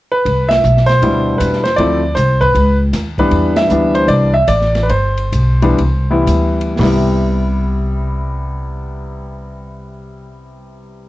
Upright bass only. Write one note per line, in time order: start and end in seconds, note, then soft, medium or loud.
0.25 0.63 C2 medium
0.64 1.01 B1 medium
1.02 1.39 D2 medium
1.40 1.77 E2 medium
1.78 2.16 D2 medium
2.16 2.54 C2 medium
2.55 2.92 C#2 medium
2.93 3.30 D#2 medium
3.31 3.69 E2 medium
3.70 4.07 D2 medium
4.08 4.47 C2 medium
4.48 4.88 A1 medium
4.89 5.32 G1 medium
5.32 5.77 B1 medium
5.78 6.26 C2 medium
6.26 6.78 D2 medium
6.79 11.09 C2 medium